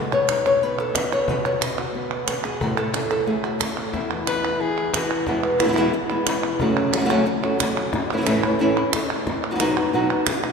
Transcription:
Already playing: B2 A4
0.12 B3 C#5, clap
0.29 D#4, cajon slap, clap
0.46 C#5, clap
0.62 B3 B4, cajon slap
0.79 A4, clap
0.95 B3, cajon bass, cajon slap, clap
1.12 C#5, clap
1.28 B2 B4, cajon bass
1.45 B3 C#5, clap
1.61 D#5, cajon slap, clap
1.78 F#4, cajon slap, clap
1.95 B3
2.11 clap
2.28 B3, cajon slap, clap
2.44 G#4, clap
2.61 A2 F#4, cajon bass
2.77 A3 A4, clap
2.94 E4, cajon slap, clap
3.11 A4, clap
3.27 A3 G#4, cajon slap
3.44 F#4, clap
3.60 A3, cajon bass, cajon slap, clap
3.77 clap
3.93 E2 E4, cajon bass, cajon slap
4.11 E3, clap
4.27 B4, cajon slap, clap
4.44 E3, clap
4.60 E3 G#4, cajon slap
4.78 clap
4.94 E3 F#4, cajon bass, cajon slap, clap
5.11 clap
5.27 E2 B2 E3 G#3 B3 E4, cajon bass, cajon slap
5.43 clap
5.60 E3 G#3 B3 E4, cajon slap, clap
5.64 B2 G#3 B3 E4
5.68 B2 E3 G#3 B3 E4
5.72 B2 E3 G#3 B3 E4, clap
5.77 E2 B2 E3 G#3 B3 E4
5.93 muted nylon-string guitar stroke, cajon slap
6.10 E3 G#3 B3 E4, clap
6.26 E3 G#3 B3 E4, cajon slap, clap
6.43 clap
6.60 F#2 C#3 F#3 A3 C#4 F#4, cajon bass
6.77 clap
6.93 C#3 F#3 A3 C#4 F#4, cajon slap, clap
6.97 C#3 F#3 C#4 F#4
7.01 C#3 A3 C#4 F#4
7.06 F#3 A3 C#4 F#4
7.10 F#2 C#3 F#3 A3 C#4 F#4, clap
7.26 muted nylon-string guitar stroke
7.43 F#3 A3 C#4 F#4, clap
7.59 F#3 A3 C#4 F#4, cajon bass, cajon slap, clap
7.77 clap
7.93 muted nylon-string guitar stroke, cajon bass, cajon slap
8.10 E3 A3 C#4 E4, clap
8.17 E3 A3 C#4 E4
8.21 E3 A3 C#4 E4
8.26 A2 E3 A3 C#4 E4, cajon slap, clap
8.43 A3 C#4 E4, clap
8.59 A2 E3 A3 C#4 E4
8.76 A3 C#4 E4, clap
8.93 muted nylon-string guitar stroke, cajon bass, cajon slap, clap
9.10 clap
9.27 muted nylon-string guitar stroke, cajon bass, cajon slap
9.44 clap
9.51 F#3 B3 D#4 F#4
9.55 F#3 B3 D#4 F#4
9.60 B2 F#3 B3 D#4 F#4, cajon slap, clap
9.76 B3 D#4 F#4, clap
9.93 B2 F#3 B3 D#4 F#4
10.10 B3 D#4 F#4, clap
10.27 muted nylon-string guitar stroke, cajon bass, cajon slap, clap
10.43 D#4, clap

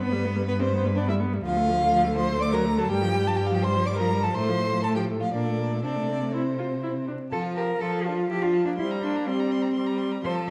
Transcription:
0.00 G2 B3 B4
0.12 G3
0.24 B3
0.36 G3
0.48 B3 B4
0.59 G3 C4 C5
0.73 B3
0.82 G3 B3 B4
0.95 B3 D4 D5
1.08 G3 E4 E5
1.20 B3
1.33 G3
1.43 D2 F3 F4 F5
1.57 A3
1.69 F3
1.81 A3
1.93 F3
2.05 A3
2.16 F3 C5 C6
2.29 A3
2.40 A3 D5 D6
2.52 F#3 A#4 A#5
2.66 A3
2.77 F#3 A4 A5
2.89 G2 G3 G4 G5
3.02 F3
3.15 G3
3.26 F3 A5
3.36 G3 G5
3.46 F5
3.51 F3 G5
3.63 G3 C5 C6
3.75 F3
3.86 G3 D5 D6
3.97 F3 A#4 A#5
4.12 G3
4.22 F3 A4 A5
4.35 A2 A3 C5 C6
4.48 F3
4.60 A3
4.72 F3
4.82 A3 A4 A5
4.95 F3 G4 G5
5.08 A3
5.20 F3 F4 F5
5.32 A#2 A#3 D4 D5
5.46 A3
5.59 A#3
5.72 A3
5.83 C3 C4 D4 D5
5.96 A3
6.09 C4
6.21 A3
6.33 C4 E4 C5
6.59 F4
6.83 E4
7.08 D4
7.31 F3 F4 A4 A5
7.43 F5
7.55 G4 A#4 A5
7.68 F5
7.80 F3 F4 A4 A5
7.92 F5
8.05 D4 F4 A5
8.18 F5
8.30 F3 E4 G4 A5
8.42 D4 F4 F5
8.54 A5
8.66 A#3 D4 F5
8.78 G3 C4 E4 C6
8.91 A#5
9.03 A#3 D4 C6
9.16 A#5
9.27 G3 C4 C6
9.40 A#5
9.52 C6
9.62 A#5
9.74 G3 C6
9.86 A#5
9.98 C6
10.11 A#5
10.24 F3 A4 C5 C6
10.35 A5

